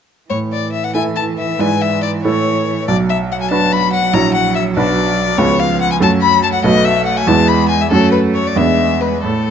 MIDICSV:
0, 0, Header, 1, 4, 480
1, 0, Start_track
1, 0, Key_signature, 3, "major"
1, 0, Tempo, 430725
1, 340, Time_signature, 6, 3, 24, 8
1, 3213, Tempo, 418994
1, 8973, Tempo, 448096
1, 10680, End_track
2, 0, Start_track
2, 0, Title_t, "Violin"
2, 0, Program_c, 0, 40
2, 333, Note_on_c, 0, 73, 57
2, 422, Note_off_c, 0, 73, 0
2, 586, Note_on_c, 0, 74, 53
2, 803, Note_off_c, 0, 74, 0
2, 810, Note_on_c, 0, 76, 51
2, 939, Note_on_c, 0, 78, 49
2, 955, Note_off_c, 0, 76, 0
2, 1045, Note_off_c, 0, 78, 0
2, 1052, Note_on_c, 0, 80, 61
2, 1141, Note_off_c, 0, 80, 0
2, 1291, Note_on_c, 0, 81, 60
2, 1380, Note_off_c, 0, 81, 0
2, 1538, Note_on_c, 0, 76, 55
2, 1785, Note_on_c, 0, 80, 64
2, 1801, Note_off_c, 0, 76, 0
2, 2024, Note_on_c, 0, 76, 64
2, 2040, Note_off_c, 0, 80, 0
2, 2246, Note_off_c, 0, 76, 0
2, 2252, Note_on_c, 0, 74, 55
2, 2341, Note_off_c, 0, 74, 0
2, 2490, Note_on_c, 0, 73, 58
2, 3195, Note_off_c, 0, 73, 0
2, 3208, Note_on_c, 0, 74, 66
2, 3300, Note_off_c, 0, 74, 0
2, 3456, Note_on_c, 0, 76, 64
2, 3548, Note_off_c, 0, 76, 0
2, 3712, Note_on_c, 0, 78, 56
2, 3757, Note_off_c, 0, 78, 0
2, 3815, Note_on_c, 0, 80, 62
2, 3923, Note_off_c, 0, 80, 0
2, 3930, Note_on_c, 0, 81, 71
2, 4172, Note_on_c, 0, 83, 80
2, 4190, Note_off_c, 0, 81, 0
2, 4405, Note_off_c, 0, 83, 0
2, 4412, Note_on_c, 0, 78, 73
2, 4647, Note_on_c, 0, 82, 82
2, 4664, Note_off_c, 0, 78, 0
2, 4878, Note_off_c, 0, 82, 0
2, 4885, Note_on_c, 0, 78, 70
2, 5119, Note_off_c, 0, 78, 0
2, 5126, Note_on_c, 0, 76, 63
2, 5217, Note_off_c, 0, 76, 0
2, 5371, Note_on_c, 0, 74, 73
2, 6069, Note_on_c, 0, 73, 82
2, 6086, Note_off_c, 0, 74, 0
2, 6315, Note_on_c, 0, 77, 72
2, 6333, Note_off_c, 0, 73, 0
2, 6558, Note_off_c, 0, 77, 0
2, 6569, Note_on_c, 0, 78, 68
2, 6682, Note_off_c, 0, 78, 0
2, 6688, Note_on_c, 0, 80, 66
2, 6733, Note_off_c, 0, 80, 0
2, 6807, Note_on_c, 0, 81, 82
2, 6899, Note_off_c, 0, 81, 0
2, 7027, Note_on_c, 0, 83, 85
2, 7267, Note_off_c, 0, 83, 0
2, 7279, Note_on_c, 0, 81, 68
2, 7327, Note_off_c, 0, 81, 0
2, 7391, Note_on_c, 0, 78, 63
2, 7513, Note_off_c, 0, 78, 0
2, 7529, Note_on_c, 0, 75, 79
2, 7755, Note_on_c, 0, 76, 80
2, 7772, Note_off_c, 0, 75, 0
2, 7991, Note_off_c, 0, 76, 0
2, 7998, Note_on_c, 0, 78, 64
2, 8122, Note_on_c, 0, 80, 70
2, 8139, Note_off_c, 0, 78, 0
2, 8248, Note_on_c, 0, 81, 77
2, 8265, Note_off_c, 0, 80, 0
2, 8479, Note_on_c, 0, 83, 81
2, 8496, Note_off_c, 0, 81, 0
2, 8713, Note_off_c, 0, 83, 0
2, 8720, Note_on_c, 0, 80, 68
2, 8858, Note_on_c, 0, 76, 61
2, 8875, Note_off_c, 0, 80, 0
2, 8967, Note_off_c, 0, 76, 0
2, 8974, Note_on_c, 0, 69, 77
2, 9184, Note_off_c, 0, 69, 0
2, 9190, Note_on_c, 0, 71, 66
2, 9276, Note_off_c, 0, 71, 0
2, 9436, Note_on_c, 0, 73, 57
2, 9572, Note_on_c, 0, 74, 56
2, 9588, Note_off_c, 0, 73, 0
2, 9681, Note_on_c, 0, 76, 67
2, 9698, Note_off_c, 0, 74, 0
2, 10148, Note_on_c, 0, 71, 55
2, 10164, Note_off_c, 0, 76, 0
2, 10396, Note_off_c, 0, 71, 0
2, 10403, Note_on_c, 0, 69, 53
2, 10680, Note_off_c, 0, 69, 0
2, 10680, End_track
3, 0, Start_track
3, 0, Title_t, "Grand piano"
3, 0, Program_c, 1, 0
3, 337, Note_on_c, 1, 45, 42
3, 543, Control_c, 1, 64, 127
3, 1038, Note_off_c, 1, 45, 0
3, 1052, Note_on_c, 1, 64, 34
3, 1057, Note_on_c, 1, 69, 33
3, 1067, Note_on_c, 1, 76, 37
3, 1728, Note_off_c, 1, 64, 0
3, 1730, Note_off_c, 1, 69, 0
3, 1735, Note_off_c, 1, 76, 0
3, 1772, Note_on_c, 1, 44, 45
3, 1776, Note_on_c, 1, 64, 32
3, 1778, Note_on_c, 1, 71, 32
3, 1786, Note_on_c, 1, 74, 31
3, 1797, Control_c, 1, 64, 0
3, 1976, Control_c, 1, 64, 127
3, 2453, Note_off_c, 1, 64, 0
3, 2454, Note_off_c, 1, 71, 0
3, 2458, Note_off_c, 1, 74, 0
3, 2474, Note_off_c, 1, 44, 0
3, 2501, Note_on_c, 1, 45, 46
3, 2503, Note_on_c, 1, 64, 33
3, 2508, Note_on_c, 1, 69, 33
3, 2513, Note_on_c, 1, 73, 37
3, 2520, Control_c, 1, 64, 0
3, 2729, Control_c, 1, 64, 127
3, 3171, Note_off_c, 1, 64, 0
3, 3173, Note_off_c, 1, 69, 0
3, 3176, Note_off_c, 1, 73, 0
3, 3193, Note_off_c, 1, 45, 0
3, 3208, Note_on_c, 1, 35, 50
3, 3233, Control_c, 1, 64, 0
3, 3453, Control_c, 1, 64, 127
3, 3913, Note_off_c, 1, 35, 0
3, 3928, Note_on_c, 1, 62, 40
3, 3936, Note_on_c, 1, 71, 47
3, 3938, Note_on_c, 1, 66, 39
3, 4606, Note_off_c, 1, 62, 0
3, 4610, Note_off_c, 1, 66, 0
3, 4610, Note_off_c, 1, 71, 0
3, 4642, Note_on_c, 1, 34, 51
3, 4647, Note_on_c, 1, 64, 36
3, 4650, Note_on_c, 1, 66, 39
3, 4657, Note_on_c, 1, 73, 37
3, 4675, Control_c, 1, 64, 0
3, 4834, Control_c, 1, 64, 127
3, 5315, Note_off_c, 1, 64, 0
3, 5317, Note_off_c, 1, 66, 0
3, 5320, Note_off_c, 1, 73, 0
3, 5337, Note_off_c, 1, 34, 0
3, 5367, Note_on_c, 1, 35, 58
3, 5369, Note_on_c, 1, 62, 41
3, 5371, Note_on_c, 1, 66, 42
3, 5378, Note_on_c, 1, 71, 41
3, 5385, Control_c, 1, 64, 0
3, 5601, Control_c, 1, 64, 127
3, 6036, Note_off_c, 1, 62, 0
3, 6037, Note_off_c, 1, 66, 0
3, 6040, Note_off_c, 1, 71, 0
3, 6060, Note_off_c, 1, 35, 0
3, 6072, Note_on_c, 1, 59, 41
3, 6073, Note_on_c, 1, 37, 54
3, 6081, Note_on_c, 1, 65, 42
3, 6086, Note_on_c, 1, 68, 40
3, 6102, Control_c, 1, 64, 0
3, 6272, Control_c, 1, 64, 127
3, 6748, Note_off_c, 1, 59, 0
3, 6753, Note_off_c, 1, 65, 0
3, 6755, Note_off_c, 1, 68, 0
3, 6773, Note_off_c, 1, 37, 0
3, 6787, Note_on_c, 1, 57, 44
3, 6789, Note_on_c, 1, 42, 60
3, 6796, Note_on_c, 1, 66, 40
3, 6800, Note_on_c, 1, 69, 44
3, 6818, Control_c, 1, 64, 0
3, 6992, Control_c, 1, 64, 127
3, 7466, Note_off_c, 1, 57, 0
3, 7471, Note_off_c, 1, 66, 0
3, 7473, Note_off_c, 1, 69, 0
3, 7491, Note_off_c, 1, 42, 0
3, 7514, Note_on_c, 1, 35, 54
3, 7516, Note_on_c, 1, 57, 41
3, 7522, Note_on_c, 1, 66, 40
3, 7527, Note_on_c, 1, 71, 41
3, 7540, Control_c, 1, 64, 0
3, 7729, Control_c, 1, 64, 127
3, 8198, Note_off_c, 1, 57, 0
3, 8201, Note_off_c, 1, 66, 0
3, 8204, Note_off_c, 1, 71, 0
3, 8221, Note_off_c, 1, 35, 0
3, 8238, Note_on_c, 1, 40, 58
3, 8243, Note_on_c, 1, 56, 44
3, 8252, Note_on_c, 1, 64, 42
3, 8253, Note_on_c, 1, 71, 41
3, 8266, Control_c, 1, 64, 0
3, 8482, Control_c, 1, 64, 127
3, 8926, Note_off_c, 1, 56, 0
3, 8931, Note_off_c, 1, 64, 0
3, 8931, Note_off_c, 1, 71, 0
3, 8948, Note_off_c, 1, 40, 0
3, 8969, Note_on_c, 1, 42, 52
3, 8972, Note_on_c, 1, 57, 37
3, 8979, Note_on_c, 1, 61, 35
3, 8984, Note_on_c, 1, 66, 38
3, 8993, Control_c, 1, 64, 0
3, 9159, Control_c, 1, 64, 127
3, 9631, Note_off_c, 1, 57, 0
3, 9635, Note_off_c, 1, 61, 0
3, 9637, Note_off_c, 1, 66, 0
3, 9652, Note_off_c, 1, 42, 0
3, 9666, Note_on_c, 1, 59, 36
3, 9667, Note_on_c, 1, 40, 51
3, 9671, Note_on_c, 1, 62, 33
3, 9678, Note_on_c, 1, 68, 37
3, 9695, Control_c, 1, 64, 0
3, 9864, Control_c, 1, 64, 127
3, 10356, Note_off_c, 1, 59, 0
3, 10358, Note_off_c, 1, 62, 0
3, 10362, Note_off_c, 1, 68, 0
3, 10377, Note_off_c, 1, 40, 0
3, 10391, Note_on_c, 1, 45, 42
3, 10424, Control_c, 1, 64, 0
3, 10593, Control_c, 1, 64, 127
3, 10680, Note_off_c, 1, 45, 0
3, 10680, End_track
4, 0, Start_track
4, 0, Title_t, "Cello"
4, 0, Program_c, 2, 42
4, 333, Note_on_c, 2, 52, 43
4, 3211, Note_on_c, 2, 54, 51
4, 3228, Note_off_c, 2, 52, 0
4, 6063, Note_on_c, 2, 53, 55
4, 6080, Note_off_c, 2, 54, 0
4, 6788, Note_on_c, 2, 54, 59
4, 6805, Note_off_c, 2, 53, 0
4, 7506, Note_off_c, 2, 54, 0
4, 7513, Note_on_c, 2, 57, 50
4, 8243, Note_on_c, 2, 56, 54
4, 8260, Note_off_c, 2, 57, 0
4, 8958, Note_off_c, 2, 56, 0
4, 8965, Note_on_c, 2, 57, 47
4, 9659, Note_on_c, 2, 56, 46
4, 9675, Note_off_c, 2, 57, 0
4, 10396, Note_on_c, 2, 57, 44
4, 10412, Note_off_c, 2, 56, 0
4, 10680, Note_off_c, 2, 57, 0
4, 10680, End_track
0, 0, End_of_file